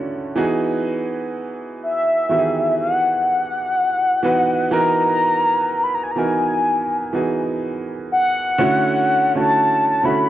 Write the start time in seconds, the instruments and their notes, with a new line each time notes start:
Already playing: grand piano C#3 D3 A3 C#4 E4 F#4 A4
0.36 grand piano E3 B3 D#4 F#4 G#4
1.83 soft synth lead E5
2.29 grand piano D#3 E3 B3 F#4 G4
2.38 grand piano G#4
2.79 soft synth lead F#5
4.23 grand piano E3 B3 D#4 F#4 B4
4.71 grand piano E3 B3 D#4 F#4 A#4, soft synth lead A#5
5.84 soft synth lead B5
5.95 soft synth lead A#5
6.03 soft synth lead G#5
6.11 soft synth lead A#5
6.16 grand piano E3 B3 D#4 F#4 A#4, soft synth lead G#5
7.13 grand piano E3 B3 D#4 F#4 G#4
8.12 soft synth lead F#5
8.58 grand piano D3 A3 C#4 E4 F#4
9.35 grand piano D3 A3 C#4 E4 F#4, soft synth lead A5
10.03 grand piano D3 A3 C#4 E4 F#4, soft synth lead B5